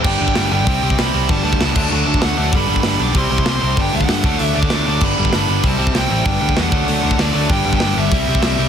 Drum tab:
CC |x---------------|------x---------|----------------|----------------|
HH |----o---o---o---|o---o-------o---|o---o---o---o---|o---o---o---o---|
SD |----o-------o---|----o-------o---|----o-------o---|----o-------o---|
BD |o--o----o--o----|o--o--o----o----|o--o----o--o----|o--o--o----o----|

CC |x---------------|----------------|----------------|
HH |----o---o---o---|----o---o---o---|o---o---o---o---|
SD |----o-------o---|----o-------o---|----o-------o---|
BD |o--o----o--o----|o--o--o----o----|o--o----o--o----|